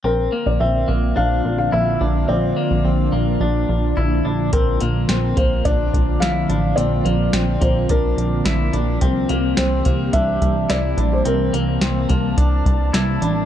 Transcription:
0.04 analog synth bass A#1, ambient pad D3 F3 A#3 C4 F4, clean electric guitar C4, felt piano A#4
0.32 clean electric guitar A#3
0.46 analog synth bass A#1, felt piano D5
0.60 analog synth bass A#1, clean electric guitar C4, felt piano E5
0.88 analog synth bass A#1, clean electric guitar A#3
1.16 analog synth bass A#1, clean electric guitar D4, felt piano F5
1.45 analog synth bass A#1
1.58 felt piano F5
1.72 analog synth bass A#1, clean electric guitar E4, felt piano E5
2.01 analog synth bass A#1, clean electric guitar D4
2.28 analog synth bass A#1, clean electric guitar C4, ambient pad D4, felt piano D5
2.56 clean electric guitar A#3
2.71 analog synth bass A#1
2.85 analog synth bass A#1, clean electric guitar C4
3.12 analog synth bass A#1, clean electric guitar A#3
3.40 analog synth bass A#1, clean electric guitar D4
3.69 analog synth bass A#1
3.97 analog synth bass A#1, clean electric guitar E4
4.25 analog synth bass A#1, clean electric guitar D4
4.53 analog synth bass A#1, ambient pad D3 F3 A#3 C4 F4, clean electric guitar C4, felt piano A#4, kick, closed hi-hat
4.80 analog synth bass A#1, clean electric guitar A#3, closed hi-hat
5.09 analog synth bass A#1, clean electric guitar C4, snare, closed hi-hat
5.37 analog synth bass A#1, clean electric guitar A#3, felt piano C5, kick, closed hi-hat
5.65 analog synth bass A#1, clean electric guitar D4, felt piano D5, kick, closed hi-hat
5.93 analog synth bass A#1, kick, closed hi-hat
6.20 analog synth bass A#1, clean electric guitar E4, felt piano F5, snare, closed hi-hat
6.49 analog synth bass A1, clean electric guitar D4, closed hi-hat
6.76 analog synth bass A#1, clean electric guitar C4, felt piano D5, closed hi-hat
7.05 analog synth bass A#1, clean electric guitar A#3, closed hi-hat
7.33 analog synth bass A#1, clean electric guitar C4, snare, closed hi-hat
7.61 analog synth bass A#1, clean electric guitar A#3, felt piano C5, kick, closed hi-hat
7.89 analog synth bass A#1, clean electric guitar D4, felt piano A#4, kick, closed hi-hat
8.17 analog synth bass A#1, closed hi-hat
8.45 analog synth bass A#1, clean electric guitar E4, snare, closed hi-hat
8.73 analog synth bass A#1, clean electric guitar D4, closed hi-hat
9.01 analog synth bass C2, ambient pad E3 G3 G4, clean electric guitar C4, kick, closed hi-hat
9.29 analog synth bass C2, clean electric guitar A#3, closed hi-hat
9.57 analog synth bass C2, clean electric guitar C4, felt piano C5, snare, closed hi-hat
9.85 analog synth bass C2, clean electric guitar A#3, kick, closed hi-hat
10.13 analog synth bass C2, clean electric guitar D4, felt piano E5, kick, closed hi-hat
10.41 analog synth bass C2, kick, closed hi-hat
10.70 analog synth bass C2, clean electric guitar E4, felt piano D5, snare, closed hi-hat
10.97 analog synth bass A#1, clean electric guitar D4, closed hi-hat
11.13 felt piano C5
11.25 analog synth bass C2, clean electric guitar C4, felt piano A#4, ambient pad A5, closed hi-hat
11.53 analog synth bass C2, clean electric guitar A#3, closed hi-hat
11.81 analog synth bass C2, clean electric guitar C4, snare, closed hi-hat
12.09 analog synth bass C2, clean electric guitar A#3, kick, closed hi-hat
12.37 analog synth bass C2, clean electric guitar D4, kick, closed hi-hat
12.66 analog synth bass C2, kick, closed hi-hat
12.93 analog synth bass C2, clean electric guitar E4, snare, closed hi-hat
13.22 analog synth bass A1, clean electric guitar D4, closed hi-hat

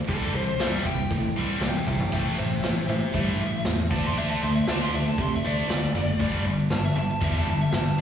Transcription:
0.08 picked electric bass C2, distorted electric guitar C3 E3 G3, lead electric guitar A4, kick, open hi-hat
0.34 picked electric bass C2, distorted electric guitar C3 E3, lead electric guitar C5
0.59 picked electric bass C2, distorted electric guitar C3 E3 G3, lead electric guitar E5, snare, open hi-hat
0.85 picked electric bass C2, distorted electric guitar C3 E3, lead electric guitar G5, kick
1.11 picked electric bass A2, distorted electric guitar C3 E3, kick, open hi-hat
1.36 picked electric bass C2, distorted electric guitar C3 E3 G3
1.61 picked electric bass C2, distorted electric guitar C3 E3, lead electric guitar E5 G5, snare, open hi-hat
1.87 picked electric bass C2, distorted electric guitar C3 E3, lead electric guitar E5 G5, kick
2.00 floor tom
2.12 picked electric bass A1, distorted electric guitar A2 E3 A3, lead electric guitar E5 G5, kick, open hi-hat
2.38 picked electric bass A1, distorted electric guitar A2 E3, lead electric guitar C5 E5
2.63 picked electric bass A1, distorted electric guitar A2 E3, lead electric guitar C5 E5, snare, open hi-hat
2.88 picked electric bass A1, distorted electric guitar A2 E3, lead electric guitar C5 E5
3.14 picked electric bass G2, distorted electric guitar A2 E3 A3, lead electric guitar E5, kick, open hi-hat
3.40 picked electric bass A1, distorted electric guitar A2 E3
3.64 picked electric bass E2, distorted electric guitar A2 E3, snare, open hi-hat
3.91 picked electric bass D2, distorted electric guitar D3 A3 D4, lead electric guitar A5, kick
4.06 lead electric guitar C6
4.17 picked electric bass D2, distorted electric guitar D3 A3 D4, lead electric guitar E5, open hi-hat
4.30 lead electric guitar A5
4.42 picked electric bass D2, distorted electric guitar D3 A3, lead electric guitar C6
4.55 lead electric guitar E5
4.67 picked electric bass D2, distorted electric guitar D3 A3 D4, lead electric guitar A5, snare, open hi-hat
4.82 lead electric guitar C6
4.94 picked electric bass D2, distorted electric guitar D3 A3, lead electric guitar E5
5.07 lead electric guitar A5
5.17 picked electric bass C3, distorted electric guitar D3 A3, kick, open hi-hat
5.22 lead electric guitar C6
5.36 lead electric guitar E5
5.44 picked electric bass D2, distorted electric guitar D3 A3 D4, lead electric guitar D5
5.67 picked electric bass D2, distorted electric guitar D3 A3, snare, open hi-hat
5.94 picked electric bass F#1, distorted electric guitar D3 A3
6.20 picked electric bass G1, distorted electric guitar G2 D3 G3, kick, open hi-hat
6.45 picked electric bass G1, distorted electric guitar G2 D3
6.70 picked electric bass G1, distorted electric guitar G2 D3, lead electric guitar A5, snare, open hi-hat
6.85 lead electric guitar E5
6.96 picked electric bass G1, distorted electric guitar G2 D3, lead electric guitar A5
7.11 lead electric guitar A5
7.21 picked electric bass E2, distorted electric guitar G2 D3 G3, lead electric guitar E5, kick, open hi-hat
7.38 lead electric guitar A5
7.47 picked electric bass G1, distorted electric guitar G2 D3, lead electric guitar A5
7.61 lead electric guitar E5
7.72 picked electric bass G1, distorted electric guitar G2 D3, lead electric guitar A5, snare, open hi-hat

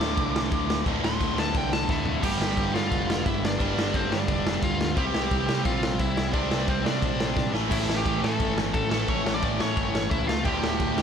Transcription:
Already playing: distorted electric guitar D2 A2 D3 A3 F4, overdriven electric guitar D2 A2 D3, lead electric guitar D6
0.00 picked electric bass D2, overdriven electric guitar D2 A2 D3, snare
0.17 picked electric bass C2, kick, crash
0.36 snare
0.52 picked electric bass D1, kick, crash
0.70 snare
0.85 picked electric bass D1, overdriven electric guitar D2 A2 D3, distorted electric guitar D2 A2 D3 A3 F4, kick, crash
1.02 picked electric bass D1, lead electric guitar C6, snare
1.21 picked electric bass D1, kick, crash
1.35 picked electric bass D2, overdriven electric guitar D2 A2 D3, snare
1.40 lead electric guitar A5
1.55 picked electric bass C2, lead electric guitar G5, kick, crash
1.73 lead electric guitar A5, snare
1.89 picked electric bass D1, lead electric guitar E4 E5 A5, kick, snare
2.05 floor tom
2.21 picked electric bass G1, overdriven electric guitar G2 D3 G3, lead electric guitar G4 G5, kick, crash
2.39 picked electric bass G1, snare
2.57 picked electric bass G1, kick, crash
2.73 picked electric bass G2, overdriven electric guitar G2 D3 G3, lead electric guitar F4 F5, snare
2.92 picked electric bass F1, kick, crash
3.10 snare
3.26 picked electric bass G1, lead electric guitar E4 E5, kick, crash
3.45 lead electric guitar D4 D5, snare
3.57 picked electric bass G1, overdriven electric guitar G2 D3 G3, kick, crash
3.77 picked electric bass G1, snare
3.94 picked electric bass G1, lead electric guitar C4 C5, kick, crash
4.10 picked electric bass G2, overdriven electric guitar G2 D3 G3, lead electric guitar D4 D5, snare
4.28 picked electric bass F1, kick, crash
4.47 snare
4.62 picked electric bass D2, lead electric guitar F4 F5, kick, crash
4.81 snare
4.95 picked electric bass C2, overdriven electric guitar C3 G3 C4, lead electric guitar G4 G5, kick, crash
5.13 picked electric bass C2, snare
5.31 picked electric bass C2, kick, crash
5.46 picked electric bass C3, overdriven electric guitar C3 G3 C4, snare
5.65 picked electric bass A#1, lead electric guitar F4 F5, kick, crash
5.83 snare
5.99 picked electric bass C2, lead electric guitar E4 E5, kick, crash
6.17 snare
6.32 picked electric bass C2, overdriven electric guitar C3 G3 C4, lead electric guitar D4 D5, kick, crash
6.51 picked electric bass C2, snare
6.68 picked electric bass C2, lead electric guitar C4 C5, kick, crash
6.83 picked electric bass C3, overdriven electric guitar C3 G3 C4, lead electric guitar D4 D5, snare
7.02 picked electric bass A#1, kick, crash
7.20 snare
7.37 picked electric bass A#1, kick, snare
7.53 picked electric bass A1, overdriven electric guitar A2 E3 A3, snare
7.69 picked electric bass A1, distorted electric guitar A2 E3 A3 C#4 E4 A4, lead electric guitar E4 E5, kick, crash
7.87 picked electric bass A1, snare
7.97 lead electric guitar G4 G5
8.04 picked electric bass A1, overdriven electric guitar A2 E3 A3, kick, crash
8.21 picked electric bass A2, lead electric guitar A4 A5, snare
8.40 picked electric bass G1, kick, crash
8.58 snare
8.74 picked electric bass A1, lead electric guitar A4 A5, kick, crash
8.90 overdriven electric guitar A2 E3 A3, lead electric guitar A4 A5, snare
9.06 picked electric bass A1, distorted electric guitar A2 E3 A3 C#4 E4 A4, lead electric guitar C#5 C#6, kick, crash
9.26 picked electric bass A1, snare
9.34 lead electric guitar D5 D6
9.41 picked electric bass A1, overdriven electric guitar A2 E3 A3, kick, crash
9.60 picked electric bass A2, lead electric guitar C#5 C#6, snare
9.77 picked electric bass G1, kick, crash
9.95 snare
10.11 picked electric bass C#2, lead electric guitar E4 E5, kick, crash
10.27 lead electric guitar F4 F5, snare
10.43 picked electric bass D1, distorted electric guitar D2 A2 D3 A3 F4, overdriven electric guitar D2 A2 D3, lead electric guitar G4 G5, kick, crash
10.62 picked electric bass D1, snare
10.80 picked electric bass D1, kick, crash
10.96 picked electric bass D2, overdriven electric guitar D2 A2 D3, snare

